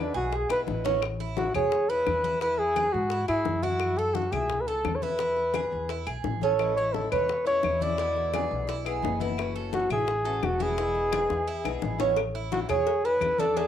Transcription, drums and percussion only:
0.32 high bongo, high conga
0.49 high bongo, high conga, claves
0.67 low bongo, high conga
0.85 low bongo, high conga
1.02 high bongo, high conga, claves
1.20 high bongo, high conga
1.37 high bongo, high conga
1.54 high conga, low conga, claves
1.72 high bongo, high conga
1.89 high bongo, high conga
2.07 high bongo, low bongo, high conga, claves
2.24 high bongo, high conga
2.41 high bongo, high conga
2.59 high bongo, high conga
2.76 high bongo, high conga, claves
3.10 high bongo
3.28 high bongo, high conga, claves
3.45 high bongo, low bongo, high conga
3.63 high bongo, high conga
3.80 high bongo, high conga, claves
3.97 high bongo, high conga
4.15 high bongo, high conga
4.33 high conga, low conga, claves
4.50 high bongo, high conga, low conga
4.67 high bongo, high conga
4.85 high bongo, low bongo, high conga, claves
5.02 high bongo, high conga
5.19 high bongo, high conga
5.37 high bongo, high conga
5.54 high bongo, high conga, claves
5.89 high bongo, high conga
6.07 high bongo, high conga, claves
6.24 high bongo, low bongo, high conga
6.41 high bongo, high conga
6.59 high bongo, high conga, claves
6.77 high bongo, high conga
6.94 high bongo, high conga
7.12 high conga, low conga, claves
7.29 high bongo, high conga
7.46 high bongo, high conga
7.63 high bongo, low bongo, high conga, claves
7.81 high bongo, high conga
7.98 high bongo, high conga
8.16 high bongo, high conga
8.33 high bongo, high conga, claves
8.69 high bongo, high conga
8.86 high bongo, high conga, claves
9.02 high bongo, low bongo, high conga
9.20 high bongo, high conga
9.38 high bongo, high conga, claves
9.56 high bongo, high conga
9.73 high bongo, high conga
9.90 high conga, low conga, claves
10.08 high bongo, high conga
10.26 high bongo, high conga
10.43 high bongo, low bongo, high conga, claves
10.60 high bongo, high conga
10.78 high bongo, high conga
10.95 high bongo, high conga
11.12 high bongo, high conga, claves
11.30 high bongo
11.48 high conga
11.65 low bongo, high conga, claves
11.82 low bongo, high conga
12.00 low bongo, high conga
12.17 cowbell, high conga, claves
12.35 high conga
12.52 cowbell, high conga
12.69 cowbell, high conga, low conga, claves
12.87 cowbell, high conga
13.04 high conga
13.21 cowbell, high conga, claves
13.38 cowbell, high conga
13.56 cowbell, high conga

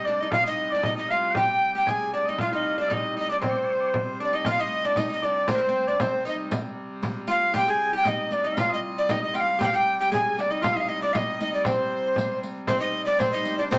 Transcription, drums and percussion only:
0.32 frame drum
0.83 frame drum
1.35 frame drum
1.87 frame drum
2.38 frame drum
2.91 frame drum
3.42 frame drum
3.94 frame drum
4.19 frame drum
4.45 riq, frame drum
4.96 riq, frame drum
5.48 riq, frame drum
6.00 riq, frame drum
6.26 riq
6.51 riq, frame drum
7.03 riq, frame drum
7.27 riq
7.53 riq, frame drum
8.05 riq, frame drum
8.30 riq
8.57 riq, frame drum
9.09 riq, frame drum
9.35 riq
9.61 riq, frame drum
10.12 riq, frame drum
10.38 riq
10.64 riq, frame drum
11.15 riq, frame drum
11.40 riq
11.65 riq, frame drum
12.16 riq, frame drum
12.43 riq
12.67 riq, frame drum
12.95 frame drum
13.20 riq, frame drum
13.45 riq
13.71 riq, frame drum

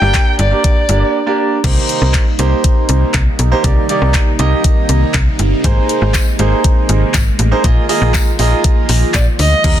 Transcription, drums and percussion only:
0.14 kick, clap, closed hi-hat
0.39 closed hi-hat
0.64 kick, closed hi-hat
0.89 closed hi-hat
1.64 kick, closed hi-hat, crash
1.89 closed hi-hat
2.14 kick, clap, closed hi-hat
2.39 closed hi-hat
2.64 kick, closed hi-hat
2.89 closed hi-hat
3.14 kick, clap, closed hi-hat
3.39 closed hi-hat
3.64 kick, closed hi-hat
3.89 closed hi-hat
4.14 kick, clap, closed hi-hat
4.39 closed hi-hat
4.64 kick, closed hi-hat
4.89 closed hi-hat
5.14 kick, clap, closed hi-hat
5.39 closed hi-hat
5.64 kick, closed hi-hat
5.89 closed hi-hat
6.14 kick, clap, closed hi-hat, tambourine
6.39 closed hi-hat
6.64 kick, closed hi-hat
6.89 closed hi-hat
7.14 kick, clap, closed hi-hat, tambourine
7.39 closed hi-hat
7.64 kick, closed hi-hat
7.89 open hi-hat
8.14 kick, clap, closed hi-hat, tambourine
8.39 open hi-hat
8.64 kick, closed hi-hat
8.89 open hi-hat
9.14 kick, clap, closed hi-hat, tambourine
9.39 open hi-hat
9.64 kick, closed hi-hat, crash

